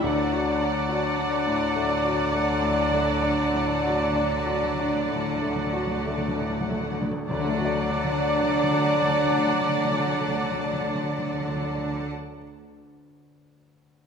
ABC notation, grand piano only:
X:1
M:12/8
L:1/16
Q:3/8=35
K:D
V:1 name="Grand piano"
D,, F D F D A,, A, F A, A,, A, D A,, F D F D A,, A, F A, A,, A, D | [D,,D,A,DFd]24 |]